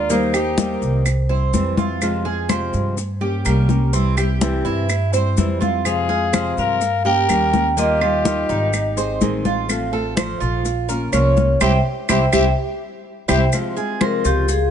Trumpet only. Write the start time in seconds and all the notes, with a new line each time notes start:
0.11 D#4
5.86 G#4
6.58 A#4
7.06 A#4
7.79 G4
11.62 G4
12.09 G4
12.33 G4
13.29 G4